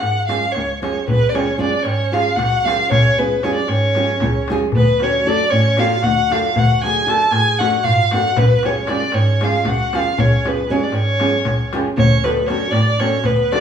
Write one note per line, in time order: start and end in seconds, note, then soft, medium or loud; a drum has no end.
0.00 0.55 G#2 medium
0.00 0.26 F#5 medium
0.15 darbuka tek soft
0.27 0.45 G#3 medium
0.27 0.45 C#4 soft
0.27 0.45 F4 soft
0.27 0.46 G#4 medium
0.27 0.54 F5 medium
0.27 darbuka tek medium
0.42 darbuka tek soft
0.52 0.88 C#2 medium
0.52 0.81 C#5 medium
0.52 darbuka tek medium
0.82 0.99 G#3 soft
0.82 0.98 C#4 soft
0.82 0.99 F4 soft
0.82 0.99 G#4 medium
0.82 1.06 C#5 medium
0.82 darbuka tek medium
0.95 darbuka tek soft
1.08 1.55 C#2 medium
1.08 1.28 B3 medium
1.08 1.31 B4 medium
1.08 darbuka dum medium
1.29 1.59 C#4 medium
1.29 1.36 D4 soft
1.29 1.37 D5 medium
1.34 1.50 G#3 soft
1.34 1.50 C#4 soft
1.34 1.51 F4 soft
1.34 1.51 G#4 medium
1.34 1.60 C#5 medium
1.34 darbuka tek medium
1.48 darbuka tek soft
1.58 1.74 G#3 medium
1.58 1.75 C#4 medium
1.58 1.83 D4 medium
1.58 1.75 F4 medium
1.58 1.75 G#4 medium
1.58 1.84 D5 medium
1.58 darbuka tek soft
1.83 2.36 G#2 medium
1.83 2.13 C#4 medium
1.83 2.15 C#5 medium
1.83 darbuka tek medium
1.99 darbuka tek soft
2.12 2.28 G#3 medium
2.12 2.28 C#4 medium
2.12 2.29 F4 medium
2.12 2.38 F4 medium
2.12 2.29 G#4 medium
2.12 2.37 F5 medium
2.12 darbuka tek medium
2.36 2.69 C#2 medium
2.36 2.66 F#4 medium
2.36 2.66 F#5 medium
2.36 darbuka tek medium
2.36 darbuka dum soft
2.53 darbuka tek soft
2.64 2.81 G#3 medium
2.64 2.81 C#4 medium
2.64 2.91 F4 medium
2.64 2.82 F4 soft
2.64 2.82 G#4 medium
2.64 2.91 F5 medium
2.64 darbuka tek medium
2.89 3.37 C#2 medium
2.89 3.16 C#4 medium
2.89 3.20 C#5 medium
2.89 darbuka dum loud
3.16 3.34 G#3 medium
3.16 3.42 B3 medium
3.16 3.34 C#4 soft
3.16 3.34 F4 soft
3.16 3.45 B4 medium
3.20 3.35 G#4 medium
3.32 darbuka tek soft
3.42 3.59 G#3 medium
3.42 3.55 C#4 medium
3.42 3.59 C#4 medium
3.42 3.59 F4 medium
3.42 3.60 G#4 medium
3.42 3.54 C#5 medium
3.42 darbuka tek medium
3.54 3.67 D4 medium
3.54 3.70 D5 medium
3.68 4.21 G#2 medium
3.68 4.49 C#4 medium
3.68 4.50 C#5 medium
3.68 darbuka tek medium
3.81 darbuka tek soft
3.95 4.12 G#3 medium
3.95 4.12 C#4 medium
3.95 4.12 F4 medium
3.95 4.12 G#4 medium
3.95 darbuka tek medium
4.20 4.54 C#2 medium
4.20 darbuka tek medium
4.20 darbuka dum medium
4.35 darbuka tek soft
4.48 4.65 G#3 medium
4.48 4.65 C#4 medium
4.48 4.65 F4 medium
4.48 4.66 G#4 medium
4.48 darbuka tek medium
4.72 5.20 D2 medium
4.72 5.00 B3 medium
4.72 5.04 B4 loud
4.72 darbuka dum medium
5.00 5.16 A3 soft
5.00 5.26 C#4 medium
5.00 5.17 D4 soft
5.00 5.17 F#4 medium
5.00 5.17 A4 medium
5.00 5.29 C#5 medium
5.00 darbuka tek medium
5.13 darbuka tek soft
5.25 5.41 A3 medium
5.25 5.41 D4 medium
5.25 5.51 D4 medium
5.25 5.41 F#4 medium
5.25 5.42 A4 medium
5.25 5.52 D5 medium
5.50 6.03 A2 medium
5.50 5.78 C#4 medium
5.50 5.81 C#5 medium
5.50 darbuka tek medium
5.77 5.93 A3 medium
5.77 5.93 D4 medium
5.77 6.03 F4 loud
5.77 5.94 F#4 medium
5.77 5.94 A4 medium
5.77 6.05 F5 medium
5.77 darbuka tek medium
6.02 6.36 D2 loud
6.02 6.32 F#4 medium
6.02 6.33 F#5 loud
6.02 darbuka tek medium
6.02 darbuka dum medium
6.17 darbuka tek soft
6.30 6.46 A3 soft
6.30 6.46 D4 medium
6.30 6.57 F4 medium
6.30 6.47 F#4 soft
6.30 6.47 A4 medium
6.30 6.60 F5 medium
6.30 darbuka tek medium
6.56 7.01 D2 medium
6.56 6.84 F#4 medium
6.56 6.83 F#5 loud
6.56 darbuka dum medium
6.82 6.98 A3 medium
6.82 6.98 D4 soft
6.82 6.99 F#4 medium
6.82 7.06 G#4 medium
6.82 6.99 A4 medium
6.82 7.11 G#5 medium
6.82 darbuka tek medium
6.96 darbuka tek soft
7.06 7.22 A3 medium
7.06 7.22 D4 medium
7.06 7.22 F#4 soft
7.06 7.23 A4 medium
7.06 7.32 A4 medium
7.06 7.33 A5 loud
7.06 darbuka tek medium
7.22 darbuka tek soft
7.31 7.84 A2 medium
7.31 7.60 G#4 medium
7.31 7.60 G#5 loud
7.31 darbuka tek medium
7.46 darbuka tek soft
7.59 7.75 A3 medium
7.59 7.75 D4 medium
7.59 7.76 F#4 soft
7.59 7.85 F#4 medium
7.59 7.76 A4 medium
7.59 7.86 F#5 medium
7.59 darbuka tek medium
7.72 darbuka tek soft
7.84 8.16 G#2 medium
7.84 8.12 F4 medium
7.84 8.12 F5 loud
7.84 darbuka tek medium
7.84 darbuka dum medium
7.99 darbuka tek soft
8.11 8.27 A3 medium
8.11 8.28 D4 soft
8.11 8.36 F#4 medium
8.11 8.28 F#4 soft
8.11 8.29 A4 medium
8.11 8.39 F#5 medium
8.11 darbuka tek medium
8.36 8.82 C#2 medium
8.36 8.65 B3 medium
8.36 8.67 B4 medium
8.36 darbuka dum loud
8.63 8.79 G#3 soft
8.63 8.79 C#4 soft
8.63 8.89 C#4 medium
8.63 8.79 F4 soft
8.63 8.80 G#4 medium
8.63 8.90 C#5 medium
8.63 darbuka tek medium
8.75 darbuka tek soft
8.87 9.03 G#3 medium
8.87 9.03 C#4 medium
8.87 9.03 F4 soft
8.87 9.04 G#4 medium
8.87 9.16 D5 medium
8.87 darbuka tek medium
8.92 9.14 D4 medium
9.12 9.64 G#2 medium
9.12 9.45 C#5 medium
9.12 darbuka tek medium
9.16 9.42 C#4 medium
9.26 darbuka tek soft
9.41 9.56 G#3 medium
9.41 9.57 C#4 medium
9.41 9.57 F4 medium
9.41 9.67 F4 medium
9.41 9.57 G#4 medium
9.41 9.69 F5 medium
9.41 darbuka tek medium
9.65 9.96 C#2 medium
9.65 9.94 F#4 medium
9.65 9.97 F#5 medium
9.65 darbuka tek medium
9.65 darbuka dum soft
9.80 darbuka tek soft
9.93 10.08 G#3 medium
9.93 10.08 C#4 soft
9.93 10.09 F4 medium
9.93 10.19 F4 medium
9.93 10.09 G#4 medium
9.93 10.21 F5 medium
9.93 darbuka tek medium
10.18 10.63 C#2 loud
10.18 10.49 C#5 medium
10.18 darbuka dum medium
10.23 10.47 C#4 medium
10.44 10.59 G#3 soft
10.44 10.70 B3 medium
10.44 10.59 C#4 soft
10.44 10.60 F4 soft
10.44 10.60 G#4 soft
10.44 10.73 B4 medium
10.44 darbuka tek medium
10.57 darbuka tek soft
10.70 10.84 G#3 medium
10.70 10.84 C#4 medium
10.70 10.82 C#4 medium
10.70 10.85 F4 medium
10.70 10.85 G#4 medium
10.70 10.85 C#5 medium
10.82 10.93 D4 medium
10.82 10.96 D5 medium
10.92 11.44 G#2 medium
10.92 11.74 C#4 medium
10.92 11.74 C#5 medium
10.92 darbuka tek medium
11.20 11.35 G#3 medium
11.20 11.36 C#4 medium
11.20 11.36 F4 medium
11.20 11.36 G#4 medium
11.20 darbuka tek medium
11.45 11.76 C#2 medium
11.45 darbuka tek medium
11.45 darbuka dum medium
11.60 darbuka tek soft
11.73 11.88 G#3 medium
11.73 11.88 C#4 medium
11.73 11.88 F4 medium
11.73 11.89 G#4 medium
11.73 darbuka tek medium
11.97 12.42 D2 loud
11.97 12.22 C#4 medium
11.97 12.26 C#5 loud
11.97 darbuka dum medium
12.23 12.39 A3 medium
12.23 12.47 B3 medium
12.23 12.39 D4 soft
12.23 12.39 F#4 soft
12.23 12.40 A4 medium
12.23 12.48 B4 medium
12.23 darbuka tek medium
12.36 darbuka tek soft
12.47 12.63 A3 medium
12.47 12.72 C#4 medium
12.47 12.63 D4 medium
12.47 12.64 F#4 medium
12.47 12.64 A4 medium
12.47 12.73 C#5 medium
12.47 darbuka tek medium
12.70 13.23 A2 medium
12.70 12.99 D4 medium
12.70 13.01 D5 medium
12.70 darbuka tek medium
12.86 darbuka tek soft
12.99 13.15 A3 medium
12.99 13.24 C#4 medium
12.99 13.15 D4 soft
12.99 13.16 F#4 medium
12.99 13.16 A4 medium
12.99 13.27 C#5 medium
12.99 darbuka tek medium
13.24 13.55 D2 medium
13.24 13.52 B3 medium
13.24 13.54 B4 medium
13.24 darbuka tek medium
13.24 darbuka dum medium
13.51 13.60 A3 soft
13.51 13.60 D4 medium
13.51 13.60 D4 soft
13.51 13.60 F#4 soft
13.51 13.60 A4 medium
13.51 13.60 D5 medium
13.51 darbuka tek medium